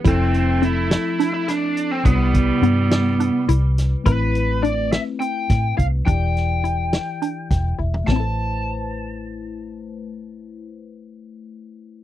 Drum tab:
HH |x-x-x-x-x-x-x-|x-x-x-x-x-x-x-|x-x-x-x-x-x-x-|x-x-x-x-x-x---|
SD |------o-o-o---|------o-----o-|------o---o---|--o---o---o---|
FT |--------------|--------------|--------------|-------------o|
BD |o-------------|o-o-----------|o---------o-o-|o---------o-o-|

HH |--------------|--------------|
SD |o-------------|--------------|
FT |--------------|--------------|
BD |o-------------|--------------|